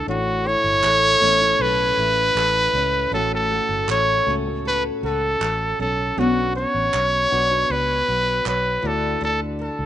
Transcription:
Already playing: A3 D4 E4 F#4 A4
0.06 A1 A2 A3 C#4 E4 F#4 C#5
0.46 E4 C#5
0.64 G1
0.83 A1 A4, clap
1.21 A1 A3 C#4 E4 C#5
1.41 A3 C#4 E4
1.60 B1 A4 B4
1.98 A1 E4
2.35 A1 A4, clap
2.73 C#2 C#4
3.11 A1 A2 A3 C#4 F#4 A4 C#5
3.35 A4
3.51 F#4
3.69 G1
3.88 A1 A4 C#5, clap
4.26 C#2 A3 C#4 F#4 C#5
4.46 A3 C#4 F#4 C#5
4.65 A4 B4
5.03 C#2 F#4 A4
5.41 A1 A4, clap
5.79 B1 C#4 A4
6.16 B1 B3 D4 F#4 C#5
6.55 F#4 C#5
6.74 A1
6.93 B1 C#5, clap
7.31 B1 B3 D4 F#4 C#5
7.49 B3 D4 F#4 C#5
7.70 C#2 B4 C#5
8.08 B1 F#4
8.46 B1 B4 C#5, clap
8.82 D2 D3 A3 E4 F#4 D5
8.87 A4
9.21 D2 D3 A4
9.59 F#4 A4
9.79 C#2

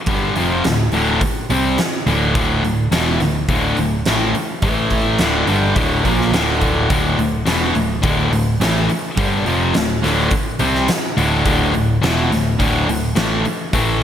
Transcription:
0.06 G1 G2 D3 G3, kick, open hi-hat
0.36 F1 F2 C3 F3, open hi-hat
0.64 D1 D2 A2, snare, open hi-hat
0.92 D1 D2 A2 D3, open hi-hat
1.21 muted picked electric bass stroke, muted distorted electric guitar stroke, muted overdriven electric guitar stroke, kick, open hi-hat
1.50 C2 C3 G3 C4, open hi-hat
1.78 muted distorted electric guitar stroke, muted overdriven electric guitar stroke, muted picked electric bass stroke, snare, open hi-hat
2.07 D1 D2 A2 D3, open hi-hat
2.35 D1 D2 A2 D3, kick, open hi-hat
2.63 D1 D2 A2, open hi-hat
2.92 E1 E2 B2 E3, snare, open hi-hat
3.20 D1 D2 A2, snare, open hi-hat
3.49 D1 D2 A2 D3, kick, open hi-hat
3.77 D1 D2 A2, open hi-hat
4.05 A1 A2 E3 A3, snare, open hi-hat
4.35 muted overdriven electric guitar stroke, muted picked electric bass stroke, muted distorted electric guitar stroke, open hi-hat
4.62 A1 A2 E3 A3, kick, open hi-hat
4.90 kick, open hi-hat
5.19 D1 D2 A2 D3, snare, open hi-hat
5.47 G1 G2 D3 G3, open hi-hat
5.76 D1 D2 A2 D3, kick, open hi-hat
6.05 A#1 A#2 F3 A#3, kick, open hi-hat
6.21 snare
6.32 D1 D2 A2 D3, snare, open hi-hat
6.61 kick, open hi-hat
6.89 D1 D2 A2 D3, kick, open hi-hat
7.17 D1 D2 A2, open hi-hat
7.46 E1 E2 B2 E3, snare, open hi-hat
7.74 D1 D2 A2, open hi-hat
8.02 D1 D2 A2 D3, kick, open hi-hat
8.31 D1 D2 A2, open hi-hat
8.60 A1 A2 E3 A3, snare, open hi-hat
8.89 muted picked electric bass stroke, muted distorted electric guitar stroke, muted overdriven electric guitar stroke, open hi-hat
9.17 G1 G2 D3 G3, kick, open hi-hat
9.46 F1 F2 C3 F3, open hi-hat
9.74 D1 D2 A2, snare, open hi-hat
10.03 D1 D2 A2 D3, snare, open hi-hat
10.30 muted overdriven electric guitar stroke, muted picked electric bass stroke, muted distorted electric guitar stroke, kick, open hi-hat
10.59 C2 C3 G3 C4, open hi-hat
10.75 snare
10.87 muted overdriven electric guitar stroke, muted distorted electric guitar stroke, muted picked electric bass stroke, snare, open hi-hat
11.17 D1 D2 A2 D3, open hi-hat
11.45 D1 D2 A2 D3, kick, open hi-hat
11.73 D1 D2 A2, open hi-hat
12.01 E1 E2 B2 E3, snare, open hi-hat
12.31 D1 D2 A2, snare, open hi-hat
12.59 D1 D2 A2 D3, kick, open hi-hat
12.88 D1 D2 A2, open hi-hat
13.15 A1 A2 E3 A3, snare, open hi-hat
13.45 muted overdriven electric guitar stroke, muted picked electric bass stroke, muted distorted electric guitar stroke, open hi-hat
13.73 A1 A2 E3 A3, kick, open hi-hat

